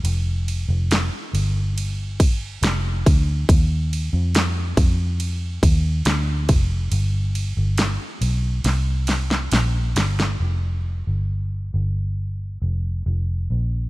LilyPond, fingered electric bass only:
\new Staff \with { instrumentName = "Fingered electric bass" } { \clef bass \time 4/4 \key c \minor \tempo 4 = 69 f,,8. f,,8 r16 g,,4. f,,8 d,8 | ees,8. f,8. f,4 ees,8 d,8 f,,8 | g,,8. g,,8 r16 b,,8 c,4 bes,,8 g,,8 | \key f \mixolydian f,,8. g,,8. g,,4 f,,8 f,,8 bes,,8 | }